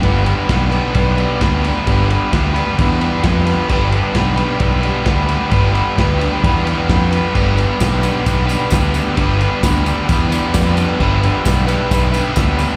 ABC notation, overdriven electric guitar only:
X:1
M:4/4
L:1/8
Q:1/4=132
K:G
V:1 name="Overdriven electric guitar"
[G,B,DB] [B,DB] [G,B,DB] [G,B,DB] [G,B,DB] [G,B,DB] [G,B,DB] [B,DB] | [G,B,DB] [B,DB] [G,B,DB] [G,B,DB] [G,B,DB] [G,B,DB] [G,B,DB] [B,DB] | [G,B,DB] [B,DB] [G,B,DB] [G,B,DB] [G,B,DB] [G,B,DB] [G,B,DB] [B,DB] | [G,B,DB] [B,DB] [G,B,DB] [G,B,DB] [G,B,DB] [G,B,DB] [G,B,DB] [B,DB] |
[G,B,DB] [B,DB] [G,B,DB] [G,B,DB] [G,B,DB] [G,B,DB] [G,B,DB] [B,DB] | [G,B,DB] [B,DB] [G,B,DB] [G,B,DB] [G,B,DB] [G,B,DB] [G,B,DB] [B,DB] | [G,B,DB] [B,DB] [G,B,DB] [G,B,DB] [G,B,DB] [G,B,DB] [G,B,DB] [B,DB] |]